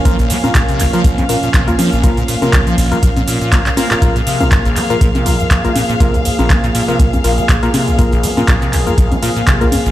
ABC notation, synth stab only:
X:1
M:4/4
L:1/16
Q:"Swing 16ths" 1/4=121
K:Bbm
V:1 name="Synth stab"
[B,FB] z2 [B,FB] z3 [B,FB] z2 [B,FB] z2 [B,FB] z2 | [B,FB] z2 [B,FB] z3 [B,FB] z4 [B,FB] z [B,FB] [B,FB] | [B,FB] z2 [B,FB] z3 [B,FB] z2 [B,FB] z2 [B,FB] z2 | [B,FB] z2 [B,FB] z3 [B,FB] z2 [B,FB] z2 [B,FB] z2 |
[B,FB] z2 [B,FB] z3 [B,FB] z2 [B,FB] z2 [B,FB] z2 |]